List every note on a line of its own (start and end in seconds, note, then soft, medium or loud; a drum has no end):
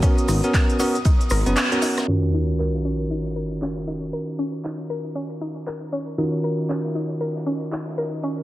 0.00 2.04 B3 medium
0.00 0.40 B3 medium
0.00 0.15 C#4 loud
0.00 0.40 C#4 medium
0.00 2.04 F#4 medium
0.00 0.40 F#4 medium
0.00 0.40 A#4 medium
0.00 2.04 A#5 medium
0.00 2.04 D#6 medium
0.00 kick loud
0.00 closed hi-hat medium
0.00 ride medium
0.00 cabasa soft
0.18 closed hi-hat medium
0.18 cabasa soft
0.28 0.41 G#1 loud
0.28 0.41 D#4 medium
0.28 cross-stick medium
0.28 open hi-hat loud
0.28 ride medium
0.28 cabasa medium
0.43 0.77 B3 medium
0.43 0.77 C#4 medium
0.43 0.77 F#4 medium
0.43 0.77 A#4 loud
0.43 closed hi-hat soft
0.43 cabasa soft
0.54 0.67 A#4 loud
0.54 kick loud
0.54 snare loud
0.54 clap loud
0.54 closed hi-hat medium
0.54 ride loud
0.54 cabasa soft
0.70 closed hi-hat medium
0.70 cabasa soft
0.79 0.96 B3 medium
0.79 0.92 C#4 loud
0.79 0.96 C#4 medium
0.79 0.96 F#4 medium
0.79 0.96 A#4 loud
0.79 open hi-hat medium
0.79 ride medium
0.79 cabasa loud
0.95 closed hi-hat soft
0.95 cabasa soft
1.05 1.18 D#4 medium
1.05 kick loud
1.05 closed hi-hat medium
1.05 ride medium
1.05 cabasa soft
1.20 closed hi-hat medium
1.20 ride soft
1.20 cabasa soft
1.30 1.44 G#1 loud
1.30 1.44 A#4 loud
1.30 cross-stick medium
1.30 open hi-hat medium
1.30 ride medium
1.30 cabasa medium
1.46 1.55 F#1 loud
1.46 1.67 B3 medium
1.46 1.67 C#4 medium
1.46 1.67 F#4 medium
1.46 1.67 B4 medium
1.46 closed hi-hat soft
1.46 cabasa soft
1.56 1.69 C#4 loud
1.56 snare loud
1.56 clap loud
1.56 closed hi-hat medium
1.56 ride medium
1.56 cabasa soft
1.72 2.05 B3 medium
1.72 2.05 C#4 medium
1.72 2.05 F#4 medium
1.72 2.05 A#4 loud
1.72 closed hi-hat medium
1.72 cabasa soft
1.82 1.95 D#4 medium
1.82 open hi-hat medium
1.82 ride medium
1.82 cabasa medium
1.97 cross-stick medium
1.97 snare medium
1.97 closed hi-hat soft
1.97 ride medium
1.97 cabasa soft
2.08 6.16 D#3 medium
2.08 2.21 C#4 medium
2.08 6.16 C#4 medium
2.08 8.43 D#4 medium
2.08 6.16 F4 medium
2.08 6.16 F#4 medium
2.08 6.16 A#4 medium
2.08 8.43 C#5 medium
2.08 6.14 F5 medium
2.08 sub drop medium
2.33 2.46 D#4 medium
2.33 ride medium
2.59 2.72 A#4 loud
2.59 clap loud
2.59 ride medium
2.75 snare soft
2.84 2.98 C#4 loud
2.84 ride medium
3.10 3.23 D#4 medium
3.10 ride medium
3.26 snare soft
3.36 3.49 A#4 medium
3.36 ride medium
3.62 3.75 C#4 loud
3.62 clap loud
3.62 ride medium
3.77 snare soft
3.87 4.00 D#4 medium
3.87 snare soft
3.87 ride medium
4.13 4.26 A#4 medium
4.13 ride medium
4.39 4.51 C#4 medium
4.39 ride medium
4.64 4.77 D#4 medium
4.64 clap loud
4.64 ride medium
4.90 5.03 A#4 loud
4.90 ride medium
5.15 5.28 C#4 medium
5.15 ride medium
5.31 ride soft
5.41 5.54 D#4 medium
5.41 ride medium
5.67 5.80 A#4 medium
5.67 clap loud
5.67 ride medium
5.92 6.05 C#4 medium
5.92 ride medium
6.18 8.43 D#3 medium
6.18 8.43 C#4 medium
6.18 6.31 D#4 medium
6.18 8.43 F4 medium
6.18 8.43 F#4 medium
6.18 8.43 A#4 medium
6.18 8.43 D#5 medium
6.18 ride medium
6.43 6.57 A#4 loud
6.43 ride medium
6.69 6.82 C#4 medium
6.69 clap loud
6.69 ride medium
6.85 snare soft
6.95 7.08 D#4 medium
6.95 ride medium
7.21 7.34 A#4 medium
7.21 ride medium
7.36 snare soft
7.46 7.59 C#4 loud
7.46 ride medium
7.72 7.85 D#4 medium
7.72 clap loud
7.72 ride medium
7.88 snare soft
7.97 8.11 A#4 loud
7.97 snare soft
7.97 ride medium
8.23 8.36 C#4 medium
8.23 ride medium